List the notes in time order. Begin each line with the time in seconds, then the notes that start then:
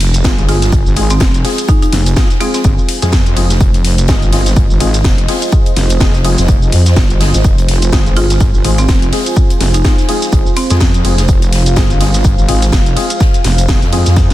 Already playing: F1 F4 C5 G#5
0.00 snare, closed hi-hat, open hi-hat, ride
0.14 closed hi-hat, shaker
0.24 G1 G#3 C4 F4 G#4, kick, snare, closed hi-hat, shaker
0.38 closed hi-hat, shaker
0.48 G#3 C4 F4 G#4, snare, closed hi-hat, open hi-hat, ride
0.62 snare, closed hi-hat, shaker
0.72 G1, kick, closed hi-hat, shaker
0.86 G1, shaker
0.96 G#1 G#3 C4 F4 G#4, closed hi-hat, open hi-hat, ride
1.10 C4, snare, closed hi-hat, shaker
1.20 F1 C4, kick, snare, closed hi-hat, shaker
1.34 closed hi-hat, shaker
1.44 G#3 C4 F4 G#4, snare, open hi-hat, ride
1.58 closed hi-hat, shaker
1.69 D#4, kick, closed hi-hat, shaker
1.82 D#4, closed hi-hat, shaker
1.92 F1, snare, closed hi-hat, open hi-hat, ride
2.06 closed hi-hat, shaker
2.16 G#3 C4 F4 G#4, kick, snare, closed hi-hat, shaker
2.30 snare, closed hi-hat, shaker
2.40 G#3 C4 F4 G#4, closed hi-hat, open hi-hat, ride
2.54 C4, snare, closed hi-hat, shaker
2.64 G1, kick, closed hi-hat, shaker
2.78 shaker
2.89 closed hi-hat, open hi-hat, ride
3.02 F2 G#3 C4 F4 G#4, snare, closed hi-hat, shaker
3.13 kick, snare, closed hi-hat, shaker
3.26 closed hi-hat, shaker
3.36 F1 G#3 C4 F4 G#4, closed hi-hat, open hi-hat, ride
3.50 snare, closed hi-hat, shaker
3.60 F1 D#5, kick, closed hi-hat, shaker
3.74 closed hi-hat, shaker
3.84 snare, closed hi-hat, open hi-hat, ride
3.98 closed hi-hat, shaker
4.08 G1 G#3 C4 F4 G#4, kick, snare, closed hi-hat, shaker
4.22 closed hi-hat, shaker
4.32 G#3 C4 F4 G#4, snare, closed hi-hat, open hi-hat, ride
4.46 snare, closed hi-hat, shaker
4.56 G1, kick, closed hi-hat, shaker
4.70 G1, shaker
4.80 G#1 G#3 C4 F4 G#4, closed hi-hat, open hi-hat, ride
4.94 snare, closed hi-hat, shaker
5.04 F1, kick, snare, closed hi-hat, shaker
5.18 closed hi-hat, shaker
5.28 G#3 C4 F4 G#4, snare, open hi-hat, ride
5.42 closed hi-hat, shaker
5.52 kick, closed hi-hat, shaker
5.66 closed hi-hat, shaker
5.76 F1, snare, closed hi-hat, open hi-hat, ride
5.89 closed hi-hat, shaker
6.00 F1 G#3 C4 F4 G#4, kick, snare, closed hi-hat, shaker
6.14 snare, closed hi-hat, shaker
6.24 G#3 C4 F4 G#4, closed hi-hat, open hi-hat, ride
6.38 F1, snare, closed hi-hat, shaker
6.48 kick, closed hi-hat, shaker
6.62 shaker
6.72 F2, closed hi-hat, open hi-hat, ride
6.86 snare, closed hi-hat, shaker
6.96 G1, kick, snare, closed hi-hat, shaker
7.10 closed hi-hat, shaker
7.20 G#3 C4 F4 G#4, snare, closed hi-hat, open hi-hat, ride
7.34 G#1, snare, closed hi-hat, shaker
7.44 F1 G#5, kick, closed hi-hat, shaker
7.58 closed hi-hat, shaker
7.68 snare, closed hi-hat, open hi-hat, ride
7.82 closed hi-hat, shaker
7.92 G1 G#3 C4 F4 G#4, kick, snare, closed hi-hat, shaker
8.06 closed hi-hat, shaker
8.16 G#3 C4 F4 G#4, snare, closed hi-hat, open hi-hat, ride
8.30 snare, closed hi-hat, shaker
8.40 G1, kick, closed hi-hat, shaker
8.54 G1, shaker
8.65 G#1 G#3 C4 F4 G#4, closed hi-hat, open hi-hat, ride
8.78 C4, snare, closed hi-hat, shaker
8.88 F1 C4, kick, snare, closed hi-hat, shaker
9.02 closed hi-hat, shaker
9.12 G#3 C4 F4 G#4, snare, open hi-hat, ride
9.26 closed hi-hat, shaker
9.36 kick, closed hi-hat, shaker
9.50 closed hi-hat, shaker
9.60 F1, snare, closed hi-hat, open hi-hat, ride
9.74 D#4, closed hi-hat, shaker
9.84 G#3 C4 D#4 F4 G#4, kick, snare, closed hi-hat, shaker
9.98 snare, closed hi-hat, shaker
10.09 G#3 C4 F4 G#4, closed hi-hat, open hi-hat, ride
10.22 snare, closed hi-hat, shaker
10.33 G1, kick, closed hi-hat, shaker
10.46 shaker
10.56 C4, closed hi-hat, open hi-hat, ride
10.70 F2 G#3 C4 F4 G#4, snare, closed hi-hat, shaker
10.80 kick, snare, closed hi-hat, shaker
10.94 closed hi-hat, shaker
11.05 F1 G#3 C4 F4 G#4, closed hi-hat, open hi-hat, ride
11.18 snare, closed hi-hat, shaker
11.28 F1 F5, kick, closed hi-hat, shaker
11.42 closed hi-hat, shaker
11.53 snare, closed hi-hat, open hi-hat, ride
11.66 closed hi-hat, shaker
11.76 G1 G#3 C4 F4 G#4, kick, snare, closed hi-hat, shaker
11.90 closed hi-hat, shaker
12.00 G#3 C4 F4 G#4, snare, closed hi-hat, open hi-hat, ride
12.14 snare, closed hi-hat, shaker
12.25 G1, kick, closed hi-hat, shaker
12.38 G1, shaker
12.48 G#1 G#3 C4 F4 G#4, closed hi-hat, open hi-hat, ride
12.62 snare, closed hi-hat, shaker
12.72 F1, kick, snare, closed hi-hat, shaker
12.86 closed hi-hat, shaker
12.96 G#3 C4 F4 G#4, snare, closed hi-hat, open hi-hat, ride
13.10 closed hi-hat, shaker
13.20 kick, snare, closed hi-hat, shaker
13.34 closed hi-hat, shaker
13.44 F1, snare, closed hi-hat, open hi-hat, ride
13.58 closed hi-hat, shaker
13.68 F1 G#3 C4 F4 G#4, kick, snare, closed hi-hat, shaker
13.82 F2, snare, closed hi-hat, shaker
13.92 G#3 C4 F4 G#4, closed hi-hat, open hi-hat, ride
14.06 F2, snare, closed hi-hat, shaker
14.16 kick, snare, closed hi-hat, shaker
14.30 F1, snare, closed hi-hat, shaker